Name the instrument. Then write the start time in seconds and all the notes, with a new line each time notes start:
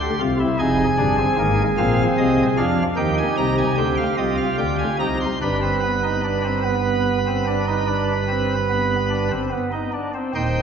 pipe organ
Already playing: C6
0.01 G4
0.20 C2 C3 F4
0.40 E4
0.59 F1 F2 D#4 G#4 G#5
0.98 G1 G2 D4
1.18 C4
1.38 G#1 G#2 A#3
1.78 A#1 A#2 C4 F5
2.18 C2 C3 D#5
2.58 F2 F3 D4 F5
2.97 D#2 D#3 D#4 G4 G5
3.18 G#5
3.37 C2 C3 A#5
3.58 G#5
3.78 D2 D3 C4 G5
3.97 F5
4.18 C2 C3 F4 D#5
4.37 F5
4.58 D2 D3 G5
4.79 G#5
4.99 C2 C3 D#4 A#5
5.21 C6
5.42 G1 G2 D4 B4 B5
5.62 C4
5.83 B3
6.03 D#4
6.24 D4
6.44 C4
6.65 B3
7.27 C4
7.47 D4
7.67 D#4
7.87 D4
8.28 C4
8.70 B3
9.11 D4
9.31 C4
9.52 B3
9.72 D#4
9.93 D4
10.14 C4
10.35 D#1 D#2 D#4 C5 G5